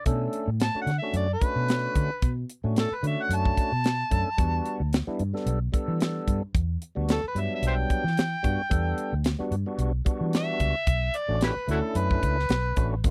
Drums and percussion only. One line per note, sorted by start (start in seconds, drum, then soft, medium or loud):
0.06 kick loud
0.06 closed hi-hat medium
0.33 closed hi-hat medium
0.60 snare loud
0.60 closed hi-hat medium
0.87 snare soft
0.87 closed hi-hat medium
1.14 closed hi-hat medium
1.41 kick medium
1.41 closed hi-hat medium
1.69 snare medium
1.69 closed hi-hat medium
1.95 kick medium
1.95 closed hi-hat medium
2.22 kick loud
2.22 closed hi-hat medium
2.50 closed hi-hat medium
2.76 snare medium
2.76 closed hi-hat medium
3.04 closed hi-hat medium
3.31 closed hi-hat medium
3.45 kick medium
3.57 kick medium
3.57 closed hi-hat medium
3.84 snare medium
3.84 closed hi-hat medium
4.11 kick medium
4.11 closed hi-hat medium
4.38 kick loud
4.38 closed hi-hat medium
4.66 closed hi-hat medium
4.93 snare loud
4.93 closed hi-hat medium
5.19 closed hi-hat medium
5.36 snare soft
5.47 closed hi-hat medium
5.74 kick medium
5.74 closed hi-hat medium
6.00 snare loud
6.00 closed hi-hat medium
6.28 kick medium
6.28 closed hi-hat medium
6.55 kick loud
6.55 closed hi-hat medium
6.82 closed hi-hat medium
7.09 snare loud
7.09 closed hi-hat medium
7.36 closed hi-hat medium
7.63 closed hi-hat medium
7.90 kick medium
7.90 closed hi-hat medium
8.07 snare soft
8.17 snare loud
8.17 closed hi-hat medium
8.44 kick medium
8.44 closed hi-hat medium
8.71 kick loud
8.71 closed hi-hat medium
8.98 closed hi-hat medium
9.24 snare loud
9.24 closed hi-hat medium
9.52 closed hi-hat medium
9.79 closed hi-hat medium
10.06 kick medium
10.06 closed hi-hat medium
10.33 snare medium
10.33 closed hi-hat medium
10.60 kick medium
10.60 closed hi-hat medium
10.87 kick loud
10.87 closed hi-hat medium
11.14 closed hi-hat medium
11.41 snare loud
11.41 closed hi-hat medium
11.69 closed hi-hat medium
11.95 closed hi-hat medium
12.11 kick medium
12.23 kick medium
12.23 closed hi-hat medium
12.39 snare soft
12.49 snare loud
12.49 closed hi-hat medium
12.76 kick medium
12.76 closed hi-hat medium
13.04 kick loud
13.04 closed hi-hat medium